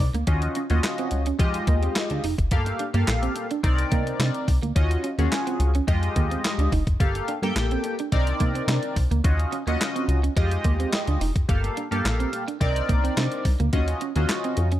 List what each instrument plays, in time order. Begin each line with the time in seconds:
0.00 analog synth bass C2
0.14 analog synth bass D2, clean electric guitar A#3, closed hi-hat
0.27 analog synth bass D#2, analog polysynth C#4 F4 F#4 D#5, kick, closed hi-hat
0.42 muted clean electric guitar stroke, closed hi-hat
0.55 clean electric guitar C#4, closed hi-hat
0.70 analog synth bass D#2, clean electric guitar A#3, analog polysynth C#4 F4 F#4 D#5, closed hi-hat
0.83 snare, clap, closed hi-hat
0.98 clean electric guitar C4, closed hi-hat
1.11 analog synth bass C#2, muted clean electric guitar stroke, closed hi-hat
1.26 clean electric guitar C#4, closed hi-hat
1.39 analog synth bass F2, analog polysynth G#3 F4 G4 D#5, muted clean electric guitar stroke, kick, closed hi-hat
1.54 closed hi-hat
1.67 analog synth bass D#2, clean electric guitar A#3, kick, closed hi-hat
1.83 clean electric guitar C4, closed hi-hat
1.95 muted clean electric guitar stroke, snare, clap, closed hi-hat
2.10 analog synth bass D2, clean electric guitar D4, closed hi-hat
2.24 analog synth bass F1, clean electric guitar D#4, open hi-hat
2.38 analog synth bass F#1, kick, closed hi-hat
2.51 analog synth bass G1, analog polysynth A#3 G4 A4 F5, kick, closed hi-hat
2.66 muted clean electric guitar stroke, closed hi-hat
2.79 clean electric guitar D4, closed hi-hat
2.94 analog synth bass G2, analog polysynth A#3 G4 A4 F5, clean electric guitar A#3, closed hi-hat
3.07 analog synth bass A#1, snare, clap, closed hi-hat
3.23 clean electric guitar C4, closed hi-hat
3.36 muted clean electric guitar stroke, closed hi-hat
3.51 clean electric guitar D4, closed hi-hat
3.63 analog synth bass C2, analog polysynth C4 D#4 A#4 D5, muted clean electric guitar stroke, kick, closed hi-hat
3.79 closed hi-hat
3.92 analog synth bass C2, clean electric guitar A#3, kick, closed hi-hat
4.07 clean electric guitar C4, closed hi-hat
4.19 analog synth bass C3, clean electric guitar D4, snare, clap, closed hi-hat
4.34 closed hi-hat
4.48 analog synth bass C2, muted clean electric guitar stroke, kick, open hi-hat
4.62 analog synth bass D2, clean electric guitar A#3, closed hi-hat
4.75 analog synth bass D#2, analog polysynth C#4 F4 F#4 D#5, kick, closed hi-hat
4.91 muted clean electric guitar stroke, closed hi-hat
5.04 clean electric guitar C#4, closed hi-hat
5.18 analog synth bass D#2, clean electric guitar A#3, analog polysynth C#4 F4 F#4 G#4, closed hi-hat
5.32 snare, clap, closed hi-hat
5.47 clean electric guitar C4, closed hi-hat
5.60 analog synth bass C#2, muted clean electric guitar stroke, closed hi-hat
5.75 clean electric guitar C#4, closed hi-hat
5.87 analog synth bass F2, analog polysynth G#3 F4 G4 D#5, muted clean electric guitar stroke, kick, closed hi-hat
6.03 closed hi-hat
6.16 analog synth bass D#2, clean electric guitar A#3, kick, closed hi-hat
6.31 clean electric guitar C4, closed hi-hat
6.44 muted clean electric guitar stroke, snare, clap, closed hi-hat
6.58 analog synth bass D2, clean electric guitar D4, closed hi-hat
6.72 analog synth bass F1, clean electric guitar D#4, kick, open hi-hat
6.87 analog synth bass F#1, kick, closed hi-hat
7.00 analog synth bass G1, analog polysynth A#3 G4 A4 F5, kick, closed hi-hat
7.15 muted clean electric guitar stroke, closed hi-hat
7.28 clean electric guitar D4, closed hi-hat
7.42 analog synth bass G2, analog polysynth A#3 G4 A4 G5, clean electric guitar A#3, closed hi-hat
7.56 analog synth bass A#1, snare, clap, closed hi-hat
7.71 clean electric guitar C4, closed hi-hat
7.84 muted clean electric guitar stroke, closed hi-hat
7.99 clean electric guitar D4, closed hi-hat
8.12 analog synth bass C2, analog polysynth C4 D#4 A#4 D5, muted clean electric guitar stroke, kick, closed hi-hat
8.27 closed hi-hat
8.40 analog synth bass C2, clean electric guitar A#3, kick, closed hi-hat
8.55 clean electric guitar C4, closed hi-hat
8.68 analog synth bass C3, clean electric guitar D4, snare, clap, closed hi-hat
8.83 closed hi-hat
8.96 analog synth bass C2, muted clean electric guitar stroke, kick, open hi-hat
9.11 analog synth bass D2, clean electric guitar A#3, closed hi-hat
9.24 analog synth bass D#2, analog polysynth C#4 F4 F#4 D#5, kick, closed hi-hat
9.39 muted clean electric guitar stroke, closed hi-hat
9.52 clean electric guitar C#4, closed hi-hat
9.67 analog synth bass D#2, clean electric guitar A#3, analog polysynth C#4 F4 F#4 D#5, closed hi-hat
9.81 snare, clap, closed hi-hat
9.96 clean electric guitar C4, closed hi-hat
10.08 analog synth bass C#2, muted clean electric guitar stroke, closed hi-hat
10.23 clean electric guitar C#4, closed hi-hat
10.36 analog synth bass F2, analog polysynth G#3 F4 G4 D#5, muted clean electric guitar stroke, kick, closed hi-hat
10.51 closed hi-hat
10.64 analog synth bass D#2, clean electric guitar A#3, kick, closed hi-hat
10.80 clean electric guitar C4, closed hi-hat
10.93 muted clean electric guitar stroke, snare, clap, closed hi-hat
11.07 analog synth bass D2, clean electric guitar D4, closed hi-hat
11.21 analog synth bass F1, clean electric guitar D#4, open hi-hat
11.35 analog synth bass F#1, kick, closed hi-hat
11.48 analog synth bass G1, analog polysynth A#3 G4 A4 F5, kick, closed hi-hat
11.64 muted clean electric guitar stroke, closed hi-hat
11.77 clean electric guitar D4, closed hi-hat
11.91 analog synth bass G2, analog polysynth A#3 G4 A4 F5, clean electric guitar A#3, closed hi-hat
12.05 analog synth bass A#1, snare, clap, closed hi-hat
12.20 clean electric guitar C4, closed hi-hat
12.33 muted clean electric guitar stroke, closed hi-hat
12.48 clean electric guitar D4, closed hi-hat
12.60 analog synth bass C2, analog polysynth C4 D#4 A#4 D5, muted clean electric guitar stroke, kick, closed hi-hat
12.76 closed hi-hat
12.89 analog synth bass C2, clean electric guitar A#3, kick, closed hi-hat
13.04 clean electric guitar C4, closed hi-hat
13.17 analog synth bass C3, clean electric guitar D4, snare, clap, closed hi-hat
13.32 closed hi-hat
13.45 analog synth bass C2, muted clean electric guitar stroke, kick, open hi-hat
13.60 analog synth bass D2, clean electric guitar A#3, closed hi-hat
13.73 analog synth bass D#2, analog polysynth C#4 F4 F#4 D#5, kick, closed hi-hat
13.88 muted clean electric guitar stroke, closed hi-hat
14.01 clean electric guitar C#4, closed hi-hat
14.16 analog synth bass D#2, clean electric guitar A#3, analog polysynth C#4 F4 F#4 D#5, closed hi-hat
14.29 snare, clap, closed hi-hat
14.44 clean electric guitar C4, closed hi-hat
14.57 analog synth bass F2, muted clean electric guitar stroke, closed hi-hat
14.72 clean electric guitar C#4, closed hi-hat